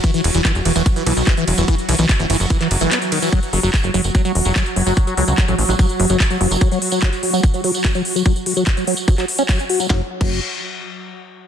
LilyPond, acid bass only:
\new Staff \with { instrumentName = "Acid bass" } { \clef bass \time 4/4 \key e \dorian \tempo 4 = 146 e16 e16 r16 e16 e16 r16 e16 e16 r16 e16 e16 r16 e16 e16 r16 e16 | e16 r16 e16 e16 r16 e16 e16 r16 e16 e16 r16 e16 b16 r16 dis16 e16 | fis16 r16 fis16 fis16 r16 fis16 fis16 r16 fis16 fis16 r16 fis16 fis16 r16 fis16 fis16 | r16 fis16 fis16 r16 fis16 fis16 r16 fis16 fis16 r16 fis16 fis16 r16 fis16 fis16 r16 |
fis16 fis16 r16 fis16 fis16 r16 fis16 fis16 r16 fis16 fis16 r16 fis16 fis16 r16 fis16 | fis16 r16 fis16 fis16 r16 fis16 fis16 r16 fis16 fis16 r16 cis'16 fis16 r16 fis'16 fis16 | fis16 r8 fis8 r2 r8. | }